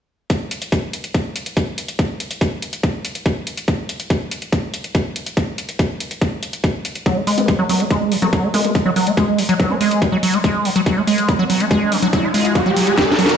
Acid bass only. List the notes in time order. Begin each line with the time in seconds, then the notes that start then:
7.06 F#3
7.17 A3
7.27 G#3
7.48 F#3
7.59 F#3
7.69 F#3
7.80 A3
7.91 G#3
8.12 F#3
8.22 F#3
8.33 F#3
8.43 A3
8.54 G#3
8.75 F#3
8.86 F#3
8.96 F#3
9.07 A3
9.17 G#3
9.38 F#3
9.49 F#3
9.60 F#3
9.70 A3
9.81 G#3
10.02 F#3
10.12 F#3
10.23 F#3
10.33 A3
10.44 G#3
10.65 F#3
10.76 F#3
10.86 F#3
10.97 A3
11.07 G#3
11.29 F#3
11.39 F#3
11.50 F#3
11.60 A3
11.71 G#3
11.92 F#3
12.02 F#3
12.13 F#3
12.24 A3
12.34 G#3
12.55 F#3
12.66 F#3
12.76 F#3
12.87 A3
12.98 G#3
13.19 F#3
13.29 F#4